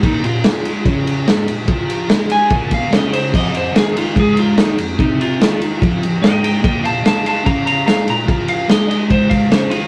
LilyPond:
<<
  \new Staff \with { instrumentName = "Electric slide guitar" } { \time 4/4 \key bes \major \tempo 4 = 146 ees'8 f'2 r4. | r4. aes''4 f''8 ees''8 c''8 | ees''8 c''8 aes'8 f'8 aes'8 f'8 ees'8 r8 | ees'8 f'2 r8 <ees'' g''>8 <ees'' g''>8 |
<ees'' g''>8 <f'' a''>8 <f'' a''>8 <f'' a''>8 <f'' bes''>8 <f'' bes''>8 <f'' bes''>8 bes''8 | r8 f''8 ees''8 ees''8 c''8 f''8 c''8 f'8 | }
  \new Staff \with { instrumentName = "Distorted electric guitar" } { \clef bass \time 4/4 \key bes \major <bes, bes>8 bes,8 <aes aes'>4 <des des'>4 <aes, aes>8 bes,8 | <f f'>4 <aes aes'>4 <bes, bes>8 r8 <des des'>4 | <f, f>8 f,8 <ees ees'>4 <aes, aes>4 <ees ees'>8 f,8 | <c c'>4 <ees ees'>4 <f, f>8 r8 <aes, aes>4 |
<bes, bes>8 bes,8 <aes aes'>4 <des des'>4 <aes, aes>8 bes,8 | <f f'>4 <aes aes'>4 <aes, aes>4 <des des'>8 <ees ees'>8 | }
  \new DrumStaff \with { instrumentName = "Drums" } \drummode { \time 4/4 <bd cymr>8 cymr8 <cymr sn>8 cymr8 <bd cymr>8 cymr8 <cymr sn>8 cymr8 | <bd cymr>8 cymr8 <cymr sn>8 cymr8 <bd cymr>8 <bd cymr>8 <cymr sn>8 cymr8 | <cymc bd>8 cymr8 <cymr sn>8 cymr8 <bd cymr>8 cymr8 <cymr sn>8 cymr8 | <bd cymr>8 cymr8 <cymr sn>8 cymr8 <bd cymr>8 cymr8 <cymr sn>8 cymr8 |
<bd cymr>8 cymr8 <cymr sn>8 cymr8 <bd cymr>8 cymr8 <cymr sn>8 cymr8 | <bd cymr>8 cymr8 <cymr sn>8 cymr8 <bd cymr>8 <bd cymr>8 <cymr sn>8 cymr8 | }
>>